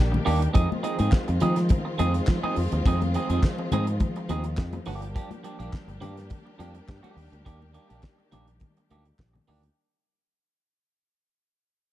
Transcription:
Already playing: fingered electric bass A#1, string section D#3 G3 A#3 D4 G4
0.12 muted clean electric guitar stroke, muted conga, high conga, low conga
0.25 fingered electric bass D#2, clean electric guitar D#3 A#3 D4 G4, open hi-hat
0.41 muted clean electric guitar stroke, closed hi-hat
0.53 fingered electric bass F2, string section F3 G#3 C4, clean electric guitar G#3 C4 D#4 G#4, kick, closed hi-hat, muted conga
0.58 string section F4
0.70 muted clean electric guitar stroke, high conga
0.83 clean electric guitar G#3 C4 D#4 G#4, closed hi-hat
0.98 fingered electric bass G#2, clean electric guitar G#3 C4 D#4 G#4, closed hi-hat, high conga
1.12 kick, snare, clap, muted conga
1.28 fingered electric bass F2, muted clean electric guitar stroke, closed hi-hat
1.40 fingered electric bass F3, clean electric guitar G#3 C4 D#4 G#4, closed hi-hat, high conga, low conga
1.56 muted clean electric guitar stroke, snare, closed hi-hat
1.69 muted clean electric guitar stroke, kick, closed hi-hat, muted conga, high conga, low conga
1.85 muted clean electric guitar stroke
1.98 fingered electric bass F2, clean electric guitar G#3 C4 D#4 G#4, closed hi-hat, high conga
2.14 muted clean electric guitar stroke, closed hi-hat
2.27 fingered electric bass F3, muted clean electric guitar stroke, kick, snare, clap, muted conga
2.43 clean electric guitar G#3 C4 D#4 G#4, high conga
2.56 fingered electric bass F2, muted clean electric guitar stroke, open hi-hat
2.72 fingered electric bass D#2, muted clean electric guitar stroke, closed hi-hat
2.86 fingered electric bass F2, clean electric guitar G#3 C4 D#4 G#4, kick, closed hi-hat, muted conga
3.01 muted clean electric guitar stroke, closed hi-hat, muted conga, high conga
3.14 clean electric guitar G#3 C4 D#4 G#4, closed hi-hat
3.29 fingered electric bass F2, clean electric guitar G#3 C4 D#4 G#4, closed hi-hat, high conga
3.43 kick, snare, clap, muted conga
3.58 muted clean electric guitar stroke, muted conga
3.72 fingered electric bass G#2, clean electric guitar G#3 C4 D#4 G#4, closed hi-hat, high conga, low conga
3.87 muted clean electric guitar stroke, closed hi-hat
4.00 muted clean electric guitar stroke, kick, closed hi-hat, muted conga, high conga, low conga
4.16 muted clean electric guitar stroke, closed hi-hat, muted conga
4.29 fingered electric bass D#2, clean electric guitar G#3 C4 D#4 G#4, closed hi-hat, high conga
4.44 muted clean electric guitar stroke, closed hi-hat
4.57 fingered electric bass F2, muted clean electric guitar stroke, kick, snare, clap, muted conga
4.73 muted clean electric guitar stroke, closed hi-hat, muted conga, high conga
4.85 fingered electric bass G1, clean electric guitar F3 A#3 D4 G4, string section G3 A#3 D4 G4, open hi-hat
5.02 muted clean electric guitar stroke, closed hi-hat
5.15 clean electric guitar F3 A#3 D4 G4, kick, closed hi-hat
5.31 muted clean electric guitar stroke, closed hi-hat, muted conga, high conga
5.43 clean electric guitar F3 A#3 D4 G4, closed hi-hat
5.59 fingered electric bass A#1, clean electric guitar F3 A#3 D4 G4, closed hi-hat, high conga
5.73 kick, snare, clap, muted conga
5.88 fingered electric bass G1, muted clean electric guitar stroke, closed hi-hat, muted conga
6.01 fingered electric bass G2, clean electric guitar F3 A#3 D4 G4, closed hi-hat, high conga, low conga
6.17 muted clean electric guitar stroke, snare, closed hi-hat
6.30 muted clean electric guitar stroke, kick, closed hi-hat, muted conga, high conga, low conga
6.45 muted clean electric guitar stroke, muted conga
6.59 fingered electric bass F2, clean electric guitar F3 A#3 D4 G4, closed hi-hat, high conga
6.74 muted clean electric guitar stroke, closed hi-hat
6.88 fingered electric bass G2, muted clean electric guitar stroke, kick, snare, clap
7.03 clean electric guitar F3 A#3 D4 G4, closed hi-hat, muted conga, high conga
7.16 fingered electric bass D#2, string section D#3, muted clean electric guitar stroke, open hi-hat
7.32 fingered electric bass D2, muted clean electric guitar stroke, closed hi-hat
7.45 fingered electric bass D#2, clean electric guitar D#3 A#3 D4 G4, kick, closed hi-hat, muted conga
7.60 muted clean electric guitar stroke, high conga
7.74 clean electric guitar D#3 A#3 D4 G4, closed hi-hat
7.89 fingered electric bass A#1, clean electric guitar D#3 A#3 D4 G4, closed hi-hat, high conga
8.03 kick, snare, clap, muted conga
8.18 muted clean electric guitar stroke, muted conga
8.32 fingered electric bass A#1, clean electric guitar D#3 A#3 D4 G4, closed hi-hat, high conga, low conga
8.47 muted clean electric guitar stroke, closed hi-hat
8.60 muted clean electric guitar stroke, kick, closed hi-hat, muted conga, high conga, low conga
8.77 muted clean electric guitar stroke, closed hi-hat, muted conga
8.90 fingered electric bass D2, clean electric guitar D#3 A#3 D4 G4, closed hi-hat, high conga
9.05 muted clean electric guitar stroke, closed hi-hat
9.19 fingered electric bass A#1, muted clean electric guitar stroke, kick, snare, clap
9.33 muted clean electric guitar stroke, high conga, low conga
9.47 fingered electric bass D2, clean electric guitar D#3 A#3 D4 G4, open hi-hat
9.63 muted clean electric guitar stroke, closed hi-hat

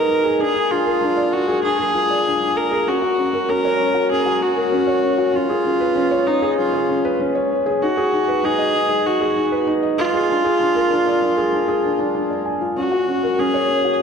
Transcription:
Already playing: felt piano D#4 G#4 B4 D#5, viola A#4
0.09 felt piano D#4
0.24 felt piano G#4
0.39 felt piano D4, viola G#4
0.54 felt piano G#4
0.70 felt piano D4, viola F4
0.86 felt piano A#4
1.01 felt piano D4
1.17 felt piano D5
1.32 felt piano D4, viola F#4
1.48 felt piano G#4
1.63 felt piano D4, viola G#4
1.79 felt piano G#4
1.94 felt piano F4
2.10 felt piano D5
2.26 felt piano D4
2.41 felt piano D4
2.56 felt piano A#4, viola A#4
2.71 felt piano G#4
2.87 felt piano C#4, viola F#4
3.02 felt piano F#4
3.18 felt piano C#4
3.33 felt piano A#4
3.49 felt piano C#4, viola A#4
3.65 felt piano C#5
3.80 felt piano C#4
3.94 felt piano F#4
4.10 felt piano C#4, viola G#4
4.26 felt piano F#4
4.41 felt piano C#4, viola F#4
4.56 felt piano A#4
4.72 felt piano C#4
4.87 felt piano C#5
5.03 felt piano C#4
5.18 felt piano F#4
5.34 felt piano C#4, viola F4
5.49 felt piano G#4
5.65 felt piano C#4
5.80 felt piano B4
5.95 felt piano C#4
6.11 felt piano C#5
6.26 felt piano C#4, viola D#4
6.42 felt piano G#4
6.58 felt piano C#4, viola F4
6.73 felt piano G#4
6.89 felt piano C#4
7.05 felt piano B4
7.20 felt piano C#4
7.35 felt piano C#5
7.50 felt piano C#4
7.66 felt piano G#4
7.82 felt piano D#4, viola F#4
7.97 felt piano G#4
8.13 felt piano D#4
8.28 felt piano B4
8.43 felt piano D#4, viola G#4
8.59 felt piano D#5
8.74 felt piano D#4
8.89 felt piano G#4
9.05 felt piano D#4, viola F#4
9.21 felt piano G#4
9.36 felt piano D#4
9.52 felt piano B4
9.67 felt piano D#4
9.83 felt piano D#5
9.98 felt piano D#4, viola F4
10.14 felt piano G#4
10.30 felt piano D4
10.44 felt piano G#4
10.60 felt piano D4
10.75 felt piano A#4
10.91 felt piano D4
11.06 felt piano D5
11.21 felt piano D4
11.37 felt piano G#4
11.53 felt piano D4
11.68 felt piano G#4
11.84 felt piano D4
11.99 felt piano D4
12.14 felt piano D4
12.30 felt piano D5
12.45 felt piano G#5
12.61 felt piano F4
12.76 felt piano C#4, viola F#4
12.92 felt piano F#4
13.08 felt piano C#4
13.23 felt piano A#4
13.39 felt piano C#4, viola G#4
13.54 felt piano C#5
13.70 felt piano C#4
13.85 felt piano F#4
13.93 viola G#4

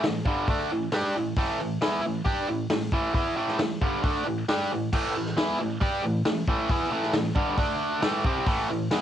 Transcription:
0.04 overdriven electric guitar A2 E3, snare, open hi-hat
0.26 overdriven electric guitar G2 D3 G3, kick
0.48 overdriven electric guitar D3 A3 D4, kick, open hi-hat
0.72 overdriven electric guitar A2 E3
0.92 overdriven electric guitar G3 D4 G4, snare, open hi-hat
1.15 overdriven electric guitar A2 E3
1.36 overdriven electric guitar A2 E3 A3, kick, open hi-hat
1.59 overdriven electric guitar A2 E3
1.81 overdriven electric guitar E3 B3 E4, snare, open hi-hat
2.02 overdriven electric guitar A2 E3
2.25 overdriven electric guitar G3 D4 G4, kick, open hi-hat
2.47 overdriven electric guitar A2 E3
2.70 overdriven electric guitar A2 E3, snare, open hi-hat
2.92 overdriven electric guitar A2 E3 A3, kick
3.14 overdriven electric guitar E3 B3 E4, kick, open hi-hat
3.36 overdriven electric guitar A2 E3 A3
3.48 snare
3.59 overdriven electric guitar A2 E3, snare, open hi-hat
3.82 overdriven electric guitar G2 D3 G3, kick
4.02 overdriven electric guitar D3 A3 D4, kick, open hi-hat
4.25 overdriven electric guitar A2 E3
4.49 overdriven electric guitar G3 D4 G4, snare, open hi-hat
4.71 overdriven electric guitar A2 E3
4.93 overdriven electric guitar A2 E3 A3, kick, crash
5.16 overdriven electric guitar A2 E3
5.26 snare
5.37 overdriven electric guitar E3 B3 E4, snare, open hi-hat
5.60 overdriven electric guitar A2 E3
5.81 overdriven electric guitar G3 D4 G4, kick, open hi-hat
6.03 overdriven electric guitar A2 E3
6.25 overdriven electric guitar A2 E3, snare, open hi-hat
6.47 overdriven electric guitar A2 E3 A3, kick
6.69 overdriven electric guitar E3 B3 E4, kick, open hi-hat
6.91 overdriven electric guitar A2 E3 A3
7.03 snare
7.13 overdriven electric guitar A2 E3, snare, open hi-hat
7.36 overdriven electric guitar G2 D3 G3, kick
7.58 overdriven electric guitar D3 A3 D4, kick, open hi-hat
8.02 overdriven electric guitar A2 E3 A3, snare, open hi-hat
8.25 overdriven electric guitar C3 G3 C4, kick
8.47 overdriven electric guitar A2 E3 A3, kick, open hi-hat
8.70 overdriven electric guitar A2 E3
8.91 overdriven electric guitar E3 B3 E4, snare, open hi-hat

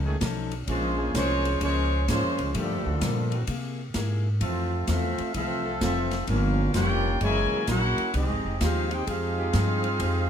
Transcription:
Already playing: upright bass C#2
0.05 trombone section D#3 A3 C#4 G#4
0.21 upright bass B1, steel-string acoustic guitar F3 C#4 D#4 A4, kick, snare, hi-hat pedal, ride
0.51 ride
0.67 upright bass A#1, trombone section F3 G#3 C#4, trumpet section G#3 C#4 F4 C5, steel-string acoustic guitar A#3 C#4 G#4 C5, kick, ride
0.98 trombone section G#3 A#3 C#4 G#4
1.14 upright bass C2, trombone section F3 G#3 C#4, trumpet section G#3 F4 C5 C#5, steel-string acoustic guitar A#3 C#4 G#4 C5, kick, snare, hi-hat pedal, ride
1.45 ride
1.61 upright bass C#2, trombone section F3 G#3 C#4, trumpet section G#3 F4 C5 C#5, steel-string acoustic guitar A#3 C#4 G#4 C5, kick, ride
2.08 upright bass G#2, trombone section F3 G#3 C#4, trumpet section G#3 C#4 F4 C5, steel-string acoustic guitar A#3 C#4 G#4 C5, kick, snare, hi-hat pedal, ride
2.23 upright bass F2
2.38 upright bass C#2, ride
2.54 steel-string acoustic guitar G2 F3 A#3 D4, upright bass G2, trombone section A#2 D3 F3 A3 D4 G4, trumpet section G3 D4 F4 A4, kick, ride
2.70 upright bass F2
2.86 upright bass D2
3.01 steel-string acoustic guitar G2 F3 A#3 D4, upright bass A#2, kick, snare, hi-hat pedal, ride
3.32 trombone section E3 A#3 C4 F#4, ride
3.47 upright bass C3, steel-string acoustic guitar C3 A#3 E4 G#4, kick, ride
3.94 upright bass G#2, steel-string acoustic guitar C3 A#3 E4 G#4, kick, snare, hi-hat pedal, ride
4.41 upright bass F2, steel-string acoustic guitar F2 E3 A3 C4, trombone section A3 C4 F4, trumpet section C4 F4 A4 E5, kick, ride
4.87 upright bass E2, steel-string acoustic guitar F2 E3 A3 C4, trombone section A3 C4 F4, trumpet section C4 A4 E5 F5, kick, snare, hi-hat pedal, ride
5.18 muted upright bass stroke, ride
5.34 upright bass C2, steel-string acoustic guitar F2 E3 A3 C4, trombone section A3 C4 F4, trumpet section C4 A4 E5 F5, kick, ride
5.65 trombone section F3 C4 F4 A4
5.81 upright bass F1, steel-string acoustic guitar F2 E3 A3 C4, trombone section A3 C4 F4, trumpet section C4 F4 A4 E5, kick, snare, hi-hat pedal, ride
6.11 snare, ride
6.27 upright bass G1, steel-string acoustic guitar G2 F3 A#3 C#4, trombone section A#3 C#4 F4, trumpet section C#4 G4 A#4 F5, kick, ride
6.74 upright bass F1, steel-string acoustic guitar G2 F3 A#3 C#4, trombone section A#3 C#4 G4, trumpet section F4 A#4 C#5 G5, kick, snare, hi-hat pedal, ride
7.21 upright bass F#1, trombone section C#3 E3 G#3, steel-string acoustic guitar F#3 A#3 E4 G#4, trumpet section E4 A#4 C#5 G#5, kick, ride
7.52 trombone section F#3 A#3 E4 G#4, muted upright bass stroke
7.67 upright bass A#1, steel-string acoustic guitar F#3 A#3 E4 G#4, trombone section A#3 C#4 F#4, trumpet section E4 A#4 C#5 F#5, kick, snare, hi-hat pedal, ride
7.98 muted upright bass stroke, ride
8.14 upright bass C2, steel-string acoustic guitar F3 G#3 D#4 G4, trombone section G#3 C4 D#4, trumpet section C4 G4 G#4 D#5, kick, ride
8.30 upright bass G#1
8.45 upright bass F1
8.60 upright bass D#2, steel-string acoustic guitar F3 G#3 D#4 G4, trombone section G#3 C4 F4, trumpet section D#4 G#4 C5 F5, kick, snare, hi-hat pedal, ride
8.91 trombone section C4 D#4 G4, trumpet section D#4 G#4 C5 G5, ride
9.07 upright bass F2, steel-string acoustic guitar F3 G#3 D#4 G4, trombone section C4 F4 G#4, trumpet section D#4 G#4 C5 F5, kick, ride
9.37 trombone section F3 G#3 D#4 G4
9.53 upright bass G2, steel-string acoustic guitar F3 G#3 D#4 G4, kick, snare, hi-hat pedal, ride
9.84 ride
10.00 upright bass F2, steel-string acoustic guitar F3 G#3 D#4 G4, kick, ride

